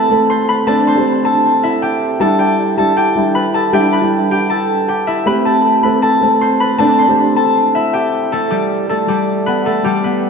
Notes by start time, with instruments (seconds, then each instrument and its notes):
Already playing: grand piano A3 C4 G4 A4, harp E4 G4 A4 B4 E5 G5 A5 B5
0.10 grand piano A3 C4 A4
0.30 harp C5 C6
0.49 harp B4 B5
0.67 grand piano A3 C4 D4, harp A4 A5
0.87 harp C5 C6
0.96 grand piano A3 C4 G4
1.25 harp A4 A5
1.63 harp E4 E5
1.82 harp G4 G5
2.20 grand piano G3 D4 E4, harp A4 A5
2.39 harp G4 G5
2.77 grand piano G3 D4 E4, harp A4 A5
2.97 harp G4 G5
3.15 grand piano G3 D4 E4
3.35 harp B4 B5
3.54 harp A4 A5
3.73 grand piano G3 D4 E4, harp G4 G5
3.93 harp B4 B5
4.01 grand piano G3 D4 E4
4.31 harp G4 G5
4.50 harp A4 A5
4.88 harp G4 G5
5.07 harp E4 E5
5.26 grand piano A3 C4 G4, harp B4 B5
5.45 harp A4 A5
5.83 grand piano A3 C4 A4, harp B4 B5
6.02 harp A4 A5
6.21 grand piano A3 C4 A4
6.41 harp C5 C6
6.60 harp B4 B5
6.78 grand piano A3 C4 D4, harp A4 A5
6.99 harp C5 C6
7.07 grand piano A3 C4 G4
7.36 harp A4 A5
7.75 harp E4 E5
7.93 harp G4 G5
8.32 harp A3 A4
8.50 harp G3 G4
8.89 harp A3 A4
9.08 harp G3 G4
9.46 harp B3 B4
9.66 harp A3 A4
9.84 harp G3 G4
10.04 harp B3 B4